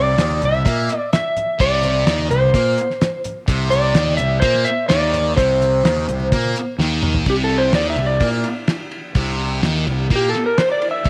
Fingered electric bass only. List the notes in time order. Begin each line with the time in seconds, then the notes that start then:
Already playing: C2
0.18 D#2
0.42 C2
0.66 A#2
1.60 C2
2.06 D#2
2.30 C2
2.54 A#2
3.48 C2
3.94 D#2
4.18 C2
4.42 A#2
4.90 D#2
5.38 C2
5.84 D#2
6.08 C2
6.32 A#2
6.78 D#2
7.27 C2
7.73 D#2
7.96 C2
8.21 A#2
9.15 C2
9.62 D#2
9.87 C2
10.10 A#2
11.05 C2